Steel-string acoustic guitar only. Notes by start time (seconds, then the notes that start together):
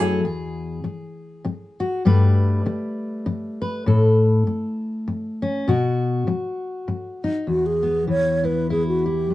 Already playing: F#2 F#3 A3 E4
0.00 A4
0.24 E2 G#4
0.84 muted steel-string acoustic guitar stroke
1.45 muted steel-string acoustic guitar stroke
1.80 F#4
2.05 G2 G3 A3 B4
2.66 muted steel-string acoustic guitar stroke
3.26 muted steel-string acoustic guitar stroke
3.62 B4
3.86 A2 A4
4.47 muted steel-string acoustic guitar stroke
5.08 muted steel-string acoustic guitar stroke
5.42 C#4
5.68 B2 F#4
6.27 muted steel-string acoustic guitar stroke
6.88 muted steel-string acoustic guitar stroke
7.24 D#4
7.47 E2
7.83 B3
8.07 E3
8.44 E4
8.70 E4
9.06 E4
9.30 G2